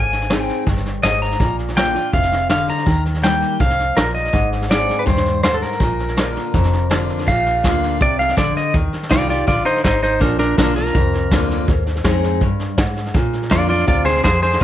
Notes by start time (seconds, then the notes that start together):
Already playing: G#1 G#2 G#5
0.12 snare
0.21 snare
0.29 G#3 C4 D#4 G#4, snare, hi-hat pedal
0.42 G5
0.49 snare
0.66 G1 G2, kick, snare
0.76 snare
0.85 snare
1.03 G#1 G#2 D#5, snare, hi-hat pedal
1.22 A#5, snare
1.31 snare
1.40 A#1 A#2, kick, snare
1.59 snare
1.68 snare
1.75 D3 A#3 D4 F4 G5, snare, hi-hat pedal
1.94 D4 F4, snare
2.13 F1 C3 F5, kick, snare
2.22 snare
2.31 snare
2.49 D3 F5, snare, hi-hat pedal
2.68 A#5, snare
2.77 snare
2.86 D#2 D#3, kick, snare
3.05 snare
3.14 snare
3.22 G3 A#3 D#4 G4 G5, snare, hi-hat pedal
3.42 snare
3.60 C2 F2 F5, kick, snare
3.70 snare
3.79 snare
3.97 A#1 A#2 A#4, snare, hi-hat pedal
4.15 D#5, snare
4.25 snare
4.33 G#1 G#2, kick, snare
4.52 snare
4.61 snare
4.68 G#3 C4 D#4 G#4 D5, snare, hi-hat pedal
4.89 snare
4.99 B4
5.06 D#2 G2 C5, kick, snare
5.16 snare
5.26 snare
5.43 G#2 C5, snare, hi-hat pedal
5.54 A4
5.62 A#4, snare
5.71 snare
5.80 A#1 A#2, kick, snare
5.99 snare
6.08 snare
6.17 D3 A#3 D4 F4, snare, hi-hat pedal
6.36 snare
6.54 F1 F2, kick, snare
6.63 snare
6.72 snare
6.90 D3 A#3 D4 F4, snare, hi-hat pedal
7.09 snare
7.18 snare
7.27 A#1 A#2 F5, kick, snare, crash
7.46 snare
7.63 D2 D3 A#3 D4 F4, kick, snare, hi-hat pedal
7.83 snare
8.01 C2 C3 D5, kick, snare
8.19 F5, snare
8.28 snare
8.37 A#1 D3 D5, kick, snare, hi-hat pedal
8.56 D#5, snare
8.74 D#2 D#3, kick, snare
8.92 snare
9.02 snare
9.09 C2 G3 A#3 D#4 F4 G4 D5, kick, snare, hi-hat pedal
9.28 D#4 F4 G4 D5, snare
9.47 A#1 D3 F4 D5, kick, snare
9.65 D#4 C5, muted fingered electric bass stroke, snare
9.76 snare
9.84 G#1 G#2 D#4 C5, kick, snare, hi-hat pedal
10.03 D#4 C5, snare
10.20 A#1 A#2 D4 A#4, kick, snare
10.39 D4 A#4, snare
10.57 B1 D3 A#3 D4 F4 A#4, kick, snare, hi-hat pedal
10.76 D4 F4 A#4, snare
10.86 snare
10.95 C2 F2, kick, snare
11.13 snare
11.31 D2 D3 A#3 D4 F4, kick, snare, hi-hat pedal
11.50 snare
11.68 D#2 G#2, kick, snare
11.86 snare
11.96 snare
12.04 F2 G#3 C4 D#4 G#4, kick, snare, hi-hat pedal
12.23 snare
12.41 G2, kick, snare
12.59 snare
12.78 G#2, kick, snare, hi-hat pedal
12.96 snare
13.05 snare
13.14 A#2, kick, snare
13.33 snare
13.42 snare
13.50 F2 D3 A#3 D4 F4 D5, kick, snare, hi-hat pedal
13.69 D4 F4 D5, snare
13.79 snare
13.87 D2 C3 F4 D5, kick, snare
14.05 G#4 C5, snare
14.16 snare
14.23 F2 D3 G#4 C5, kick, snare, hi-hat pedal
14.42 G#4 C5, snare
14.52 snare
14.60 D#3